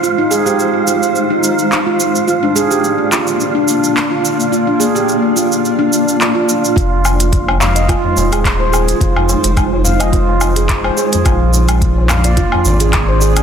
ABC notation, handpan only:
X:1
M:4/4
L:1/16
Q:"Swing 16ths" 1/4=107
K:Fdor
V:1 name="Handpan"
F E A G3 F z2 E z3 F z2 | F D A G3 F z2 D z3 F z2 | F D A G3 F z2 D z3 F z2 | F z4 z f e F z2 A2 c A z |
F z4 z f e F z2 A2 c A z | F z4 z f d F z2 A2 c A z |]